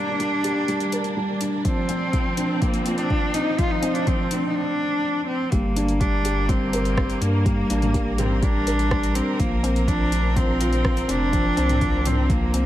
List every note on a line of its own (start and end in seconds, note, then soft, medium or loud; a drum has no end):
0.00 0.20 G3 medium
0.00 1.65 G3 medium
0.00 2.57 A#3 medium
0.00 1.41 D4 loud
0.00 1.41 D4 medium
0.00 4.55 D4 medium
0.00 0.44 G4 medium
0.00 0.93 A#4 medium
0.00 4.56 A#4 medium
0.08 mid tom medium
0.20 0.43 G3 medium
0.20 closed hi-hat soft
0.44 0.67 G4 medium
0.44 closed hi-hat medium
0.44 mid tom medium
0.68 0.82 G3 medium
0.68 closed hi-hat soft
0.80 closed hi-hat soft
0.92 1.15 A#4 medium
0.92 closed hi-hat medium
1.04 closed hi-hat soft
1.17 1.30 G3 medium
1.41 1.55 D4 medium
1.41 closed hi-hat medium
1.65 4.55 F3 medium
1.65 1.88 F3 medium
1.65 2.63 C4 loud
1.65 kick loud
1.65 closed hi-hat soft
1.70 4.55 C4 medium
1.89 2.12 C4 loud
1.89 closed hi-hat medium
2.13 2.36 F3 medium
2.13 kick loud
2.13 closed hi-hat soft
2.37 2.60 D4 medium
2.37 closed hi-hat medium
2.61 2.76 F3 medium
2.61 2.99 A#3 medium
2.61 kick loud
2.61 closed hi-hat soft
2.74 closed hi-hat soft
2.86 3.09 F4 medium
2.86 closed hi-hat medium
2.98 3.35 D4 loud
2.98 closed hi-hat soft
3.10 3.24 F3 medium
3.10 kick loud
3.34 3.48 C4 medium
3.34 3.60 D#4 loud
3.34 closed hi-hat medium
3.58 3.82 F3 medium
3.58 3.72 F4 loud
3.58 kick loud
3.58 closed hi-hat soft
3.71 3.96 D#4 medium
3.82 4.06 C4 loud
3.82 closed hi-hat medium
3.95 4.09 D4 loud
3.95 closed hi-hat soft
3.95 mid tom medium
4.07 4.30 F3 medium
4.07 4.48 C4 loud
4.07 kick loud
4.07 closed hi-hat soft
4.31 4.54 D4 medium
4.31 closed hi-hat medium
4.31 mid tom medium
4.48 4.57 D#4 medium
4.55 5.26 D4 medium
5.27 5.53 C4 medium
5.52 7.15 G1 loud
5.52 9.39 G3 medium
5.52 5.75 G3 medium
5.52 6.01 A#3 medium
5.52 kick loud
5.52 closed hi-hat soft
5.67 10.13 A#3 medium
5.76 5.99 D4 loud
5.76 closed hi-hat medium
5.89 closed hi-hat soft
5.94 12.66 A#4 medium
6.00 6.24 G3 medium
6.00 6.50 D4 medium
6.00 kick loud
6.00 closed hi-hat soft
6.25 6.48 G4 medium
6.25 closed hi-hat medium
6.48 6.63 G3 medium
6.48 7.23 C4 medium
6.48 kick loud
6.48 closed hi-hat soft
6.73 6.96 A#4 medium
6.73 closed hi-hat medium
6.85 closed hi-hat soft
6.97 7.11 G3 medium
6.97 kick loud
6.97 cross-stick medium
7.10 closed hi-hat soft
7.21 7.63 G2 loud
7.21 8.20 A#3 loud
7.21 7.35 D4 medium
7.21 closed hi-hat medium
7.46 7.69 G3 medium
7.46 kick loud
7.46 closed hi-hat soft
7.70 9.20 A1 loud
7.70 7.93 D4 loud
7.70 closed hi-hat medium
7.82 closed hi-hat soft
7.82 mid tom medium
7.94 8.17 G3 medium
7.94 kick loud
7.94 closed hi-hat soft
8.18 8.44 C4 medium
8.18 8.41 G4 medium
8.18 closed hi-hat medium
8.18 mid tom medium
8.42 8.56 G3 medium
8.42 9.16 D4 loud
8.42 kick loud
8.42 closed hi-hat soft
8.67 8.90 A#4 medium
8.67 closed hi-hat medium
8.79 closed hi-hat soft
8.91 9.05 G3 medium
8.91 kick loud
8.91 cross-stick medium
9.03 closed hi-hat soft
9.15 9.40 C4 medium
9.15 9.29 D4 medium
9.15 closed hi-hat medium
9.39 11.02 A#1 loud
9.39 9.62 F3 medium
9.39 12.66 F3 medium
9.39 9.89 A#3 medium
9.39 12.66 C4 medium
9.39 kick loud
9.39 closed hi-hat soft
9.63 9.86 C4 loud
9.63 closed hi-hat medium
9.76 closed hi-hat soft
9.87 10.11 F3 medium
9.87 10.38 D4 loud
9.87 kick loud
9.87 closed hi-hat soft
10.12 10.35 D4 medium
10.12 closed hi-hat medium
10.36 10.50 F3 medium
10.36 11.11 C4 loud
10.36 kick loud
10.36 closed hi-hat soft
10.60 10.83 F4 medium
10.60 closed hi-hat medium
10.73 closed hi-hat soft
10.85 10.98 F3 medium
10.85 kick loud
10.85 cross-stick medium
10.97 closed hi-hat soft
11.08 11.50 F1 loud
11.08 11.22 C4 medium
11.08 12.08 D4 loud
11.08 closed hi-hat medium
11.33 11.56 F3 medium
11.33 kick loud
11.33 closed hi-hat soft
11.57 12.66 C2 medium
11.57 11.80 C4 loud
11.57 closed hi-hat medium
11.69 closed hi-hat soft
11.69 mid tom medium
11.81 12.04 F3 medium
11.81 kick loud
11.81 closed hi-hat soft
12.05 12.31 C4 loud
12.05 12.28 D4 medium
12.05 closed hi-hat medium
12.05 mid tom medium
12.29 12.43 F3 medium
12.29 12.66 A#3 loud
12.29 kick loud
12.29 closed hi-hat soft
12.54 12.66 C4 medium
12.54 closed hi-hat medium